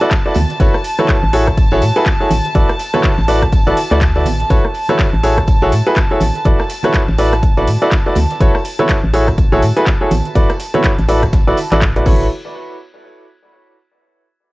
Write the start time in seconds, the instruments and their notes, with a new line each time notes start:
Already playing: violin section A5
0.01 grand piano E4 F#4 A4 B4 D5, snare, closed hi-hat, tambourine
0.11 kick, snare, clap, closed hi-hat, tambourine
0.25 grand piano E4 F#4 A4 B4 D5, snare
0.34 fm bass D2, snare, closed hi-hat, open hi-hat, tambourine, high conga
0.50 snare, closed hi-hat, tambourine
0.60 fm bass A1, grand piano E4 F#4 A4 B4 C#5, kick, closed hi-hat, tambourine
0.74 cross-stick, tambourine
0.84 closed hi-hat, open hi-hat, tambourine
0.99 grand piano E4 F#4 A4 B4 C#5, cross-stick, closed hi-hat, tambourine, high conga
1.09 kick, snare, clap, closed hi-hat, open hi-hat, tambourine
1.23 fm bass A1
1.33 grand piano E4 F#4 G#4 A4 C#5, closed hi-hat, open hi-hat, tambourine
1.47 kick, cross-stick, closed hi-hat
1.57 kick, closed hi-hat, tambourine
1.71 grand piano E4 F#4 G#4 A4 C#5, snare, tambourine, high conga
1.82 fm bass A2, closed hi-hat, open hi-hat, tambourine
1.96 grand piano E4 F#4 G#4 A4 B4, closed hi-hat, tambourine
2.06 kick, snare, clap, closed hi-hat, tambourine
2.20 grand piano E4 F#4 G#4 A4 C#5
2.31 fm bass A1, closed hi-hat, open hi-hat, tambourine, high conga
2.44 closed hi-hat, tambourine
2.55 fm bass A1, grand piano E4 F#4 A4 B4 D5, kick, closed hi-hat, tambourine
2.69 cross-stick, closed hi-hat, tambourine
2.79 snare, closed hi-hat, open hi-hat, tambourine
2.94 grand piano E4 F#4 A4 B4 C#5, cross-stick, closed hi-hat, tambourine, high conga
3.04 kick, snare, clap, closed hi-hat, tambourine
3.18 fm bass A1, snare
3.28 grand piano E4 F#4 A4 B4 D5, closed hi-hat, open hi-hat, tambourine
3.43 kick, cross-stick, closed hi-hat
3.52 kick, closed hi-hat, tambourine
3.67 grand piano E4 F#4 A4 B4 D5, closed hi-hat, tambourine, high conga
3.77 closed hi-hat, open hi-hat, tambourine
3.91 fm bass D2, grand piano E4 F#4 A4 B4 D5, snare, clap, closed hi-hat, tambourine
4.01 kick, snare, clap, closed hi-hat, tambourine
4.15 grand piano E4 F#4 A4 B4 D5, snare, tambourine
4.26 fm bass A1, snare, closed hi-hat, open hi-hat, tambourine, high conga
4.39 snare, closed hi-hat, tambourine
4.50 fm bass A1, grand piano E4 F#4 A4 B4 C#5, kick, closed hi-hat, tambourine
4.65 cross-stick
4.74 closed hi-hat, open hi-hat, tambourine
4.89 grand piano E4 F#4 A4 B4 C#5, cross-stick, closed hi-hat, tambourine, high conga
4.99 kick, snare, clap, closed hi-hat, open hi-hat, tambourine
5.13 fm bass A1
5.23 grand piano E4 F#4 G#4 A4 C#5, closed hi-hat, open hi-hat, tambourine
5.38 kick, cross-stick, closed hi-hat
5.47 kick, closed hi-hat, tambourine
5.61 grand piano E4 F#4 G#4 A4 C#5, snare, tambourine, high conga
5.72 fm bass A2, closed hi-hat, open hi-hat, tambourine
5.86 grand piano E4 F#4 G#4 A4 B4, closed hi-hat, tambourine
5.96 kick, snare, clap, closed hi-hat, tambourine
6.11 grand piano E4 F#4 G#4 A4 C#5
6.20 fm bass A1, closed hi-hat, open hi-hat, tambourine, high conga
6.35 closed hi-hat, tambourine
6.45 fm bass A1, grand piano E4 F#4 A4 B4 D5, kick, closed hi-hat, tambourine
6.59 cross-stick, tambourine
6.70 snare, closed hi-hat, open hi-hat, tambourine
6.83 grand piano E4 F#4 A4 B4 C#5, cross-stick, closed hi-hat, tambourine, high conga
6.94 kick, snare, clap, closed hi-hat, tambourine
7.08 fm bass A1, snare
7.18 grand piano E4 F#4 A4 B4 D5, closed hi-hat, open hi-hat, tambourine
7.33 cross-stick, closed hi-hat, tambourine
7.43 kick, closed hi-hat, tambourine
7.57 grand piano E4 F#4 A4 B4 D5, closed hi-hat, tambourine, high conga
7.67 fm bass A2, closed hi-hat, open hi-hat, tambourine
7.82 grand piano E4 F#4 A4 B4 D5, snare, closed hi-hat, tambourine
7.91 kick, snare, clap, closed hi-hat, tambourine
8.06 grand piano E4 F#4 A4 B4 D5, snare
8.15 fm bass D2, snare, closed hi-hat, open hi-hat, tambourine, high conga
8.30 snare, closed hi-hat, tambourine
8.40 fm bass A1, grand piano E4 F#4 A4 B4 C#5, kick, closed hi-hat, tambourine
8.55 cross-stick, tambourine
8.65 closed hi-hat, open hi-hat, tambourine
8.79 grand piano E4 F#4 A4 B4 C#5, cross-stick, closed hi-hat, tambourine, high conga
8.89 kick, snare, clap, closed hi-hat, open hi-hat, tambourine
9.04 fm bass A1
9.13 grand piano E4 F#4 G#4 A4 C#5, closed hi-hat, open hi-hat, tambourine
9.28 kick, cross-stick, closed hi-hat, tambourine
9.38 kick, closed hi-hat, tambourine
9.52 grand piano E4 F#4 G#4 A4 C#5, snare, tambourine, high conga
9.62 fm bass A2, closed hi-hat, open hi-hat, tambourine
9.77 grand piano E4 F#4 G#4 A4 B4, closed hi-hat, tambourine
9.87 kick, snare, clap, closed hi-hat, tambourine
10.01 grand piano E4 F#4 G#4 A4 C#5
10.11 fm bass A1, closed hi-hat, open hi-hat, tambourine, high conga
10.25 closed hi-hat, tambourine
10.35 fm bass A1, grand piano E4 F#4 A4 B4 D5, kick, closed hi-hat, tambourine
10.50 cross-stick, closed hi-hat, tambourine
10.60 snare, closed hi-hat, open hi-hat, tambourine
10.74 grand piano E4 F#4 A4 B4 C#5, cross-stick, closed hi-hat, tambourine, high conga
10.84 kick, snare, clap, closed hi-hat, tambourine
10.99 fm bass A1, snare, closed hi-hat, tambourine
11.09 grand piano E4 F#4 A4 B4 D5, closed hi-hat, open hi-hat, tambourine
11.23 kick, cross-stick, closed hi-hat, tambourine
11.33 kick, snare, closed hi-hat, tambourine
11.47 grand piano E4 F#4 A4 B4 D5, tambourine, high conga
11.57 closed hi-hat, open hi-hat, tambourine
11.72 fm bass A1, grand piano E4 F#4 A4 B4 D5, snare, clap, closed hi-hat, tambourine
11.82 kick, clap, closed hi-hat, tambourine
11.96 grand piano E4 F#4 A4 B4 D5, closed hi-hat
12.06 fm bass A1, grand piano E4 F#4 A4 B4 C#5, kick, crash, tambourine, high conga
12.20 tambourine